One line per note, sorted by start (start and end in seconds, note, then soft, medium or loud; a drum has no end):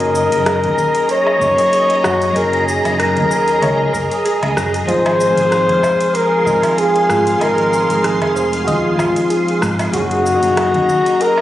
0.00 0.23 F#1 loud
0.00 1.36 F#3 loud
0.00 1.37 A#3 medium
0.00 1.38 C#4 medium
0.00 1.38 D#4 medium
0.00 0.14 F#4 medium
0.00 1.39 G#4 loud
0.00 11.41 G#4 medium
0.00 1.07 A#4 loud
0.00 4.85 D#5 medium
0.00 4.84 A#5 medium
0.00 closed hi-hat soft
0.15 cabasa medium
0.32 0.66 F#1 medium
0.32 closed hi-hat soft
0.32 cabasa soft
0.46 0.75 G#4 loud
0.46 cross-stick medium
0.46 closed hi-hat medium
0.46 cabasa soft
0.46 low woodblock medium
0.64 0.74 D#2 medium
0.64 closed hi-hat soft
0.78 kick medium
0.78 cabasa medium
0.95 closed hi-hat soft
0.95 cabasa soft
1.09 1.40 A#4 medium
1.09 2.38 C#5 loud
1.09 closed hi-hat medium
1.09 cabasa soft
1.27 low woodblock medium
1.38 1.53 F#1 medium
1.38 2.31 F#3 medium
1.38 2.32 A#3 medium
1.38 2.33 C#4 medium
1.38 1.70 C#5 medium
1.38 kick loud
1.38 cabasa medium
1.43 2.33 D#4 medium
1.43 2.34 G#4 medium
1.58 closed hi-hat soft
1.58 cabasa soft
1.73 closed hi-hat medium
1.73 cabasa soft
1.90 closed hi-hat soft
2.04 2.27 F#2 loud
2.04 2.33 F#4 loud
2.04 cross-stick medium
2.04 cabasa medium
2.04 low woodblock medium
2.22 closed hi-hat soft
2.22 cabasa soft
2.33 2.76 F#1 medium
2.33 3.89 F#3 loud
2.33 3.90 A#3 medium
2.33 3.90 C#4 medium
2.33 2.66 G#4 medium
2.33 closed hi-hat soft
2.33 cabasa soft
2.37 3.91 D#4 medium
2.37 3.92 G#4 loud
2.37 2.67 A#4 loud
2.53 closed hi-hat soft
2.68 3.01 G#4 medium
2.68 cabasa medium
2.85 3.18 F#1 medium
2.85 closed hi-hat soft
2.85 cabasa soft
2.85 low woodblock medium
3.00 4.58 A#4 medium
3.00 cross-stick medium
3.00 closed hi-hat soft
3.00 cabasa soft
3.17 3.62 D#2 medium
3.17 closed hi-hat soft
3.30 3.59 A#4 medium
3.30 cabasa medium
3.48 closed hi-hat soft
3.48 cabasa soft
3.62 3.85 C#2 medium
3.62 3.80 C#5 loud
3.62 closed hi-hat soft
3.62 cabasa soft
3.62 low woodblock medium
3.93 4.06 F#1 medium
3.93 4.12 A#4 loud
3.93 kick loud
3.93 cabasa medium
4.11 closed hi-hat soft
4.11 cabasa soft
4.25 4.54 G#4 loud
4.25 closed hi-hat medium
4.25 cabasa soft
4.43 4.53 C#2 medium
4.43 closed hi-hat soft
4.43 low woodblock medium
4.57 4.80 F#2 medium
4.57 kick medium
4.57 cross-stick medium
4.57 cabasa medium
4.74 closed hi-hat soft
4.74 cabasa soft
4.85 5.29 G#1 medium
4.85 6.42 F3 loud
4.85 6.42 G#3 medium
4.85 6.43 C4 medium
4.85 5.19 F4 medium
4.85 6.17 C5 loud
4.85 9.90 F5 medium
4.85 kick loud
4.85 closed hi-hat medium
4.85 cabasa soft
4.90 6.44 D#4 medium
4.90 6.45 G#4 loud
4.90 9.90 C6 medium
5.06 closed hi-hat soft
5.06 low woodblock medium
5.20 cabasa medium
5.37 5.69 G#1 medium
5.37 closed hi-hat soft
5.37 cabasa soft
5.51 5.80 G#4 medium
5.51 cross-stick medium
5.51 closed hi-hat soft
5.51 cabasa soft
5.69 5.79 F1 medium
5.69 closed hi-hat soft
5.83 kick medium
5.83 cabasa medium
5.83 low woodblock medium
6.01 closed hi-hat soft
6.01 cabasa soft
6.14 6.80 A#4 loud
6.14 6.45 C5 medium
6.14 closed hi-hat medium
6.14 cabasa soft
6.43 6.58 G#1 medium
6.43 7.36 F3 medium
6.43 7.37 G#3 medium
6.43 7.38 C4 medium
6.43 6.75 D#5 medium
6.43 kick loud
6.43 cabasa medium
6.47 7.38 D#4 medium
6.47 7.39 G#4 medium
6.63 closed hi-hat soft
6.63 cabasa soft
6.63 low woodblock medium
6.78 7.43 G#4 loud
6.78 closed hi-hat medium
6.78 cabasa soft
6.96 closed hi-hat soft
7.09 7.32 G#2 loud
7.09 7.38 F4 loud
7.09 cross-stick medium
7.09 cabasa medium
7.27 closed hi-hat soft
7.27 cabasa soft
7.38 7.82 G#1 medium
7.38 8.94 F3 loud
7.38 8.95 G#3 medium
7.38 8.96 C4 medium
7.38 8.07 A#4 loud
7.38 7.71 D#5 loud
7.38 closed hi-hat soft
7.38 cabasa soft
7.38 low woodblock medium
7.43 8.96 D#4 medium
7.43 8.97 G#4 loud
7.58 closed hi-hat soft
7.73 cabasa medium
7.90 8.22 G#1 medium
7.90 closed hi-hat soft
7.90 cabasa soft
8.04 8.62 G#4 medium
8.04 cross-stick medium
8.04 closed hi-hat medium
8.04 cabasa soft
8.22 8.70 F1 medium
8.22 closed hi-hat soft
8.22 low woodblock medium
8.36 8.65 C5 medium
8.36 cabasa medium
8.53 closed hi-hat soft
8.53 cabasa soft
8.63 8.72 F#4 medium
8.67 8.90 D#2 medium
8.67 9.64 F4 medium
8.67 8.86 D#5 loud
8.67 closed hi-hat medium
8.67 cabasa soft
8.96 9.11 G#1 loud
8.96 9.89 F3 medium
8.96 9.90 G#3 medium
8.96 9.91 C4 medium
8.96 9.28 F4 medium
8.96 kick loud
8.96 cabasa medium
8.96 low woodblock medium
9.00 9.91 D#4 medium
9.00 9.92 G#4 medium
9.16 closed hi-hat soft
9.16 cabasa soft
9.30 9.59 G#4 medium
9.30 closed hi-hat medium
9.30 cabasa soft
9.48 closed hi-hat soft
9.62 9.85 G#2 medium
9.62 kick medium
9.62 cross-stick medium
9.62 cabasa medium
9.79 closed hi-hat soft
9.79 cabasa soft
9.79 low woodblock medium
9.92 10.34 F#1 medium
9.92 11.41 F#3 loud
9.92 11.41 A#3 loud
9.92 11.41 C#4 medium
9.92 10.24 F#4 medium
9.92 11.41 D#5 medium
9.92 11.41 A#5 medium
9.92 kick loud
9.92 closed hi-hat medium
9.92 cabasa soft
9.96 11.41 D#4 medium
9.96 11.24 F#4 loud
9.96 11.41 G#4 loud
10.11 closed hi-hat soft
10.26 cabasa medium
10.43 10.76 F#1 medium
10.43 closed hi-hat soft
10.43 cabasa soft
10.57 10.86 G#4 loud
10.57 cross-stick medium
10.57 closed hi-hat medium
10.57 cabasa soft
10.57 low woodblock medium
10.74 10.84 D#2 medium
10.74 closed hi-hat soft
10.89 kick medium
10.89 cabasa medium
11.06 closed hi-hat soft
11.06 cabasa soft
11.21 11.41 A#4 medium
11.21 11.41 A#4 loud
11.21 closed hi-hat medium
11.21 cabasa soft
11.38 low woodblock medium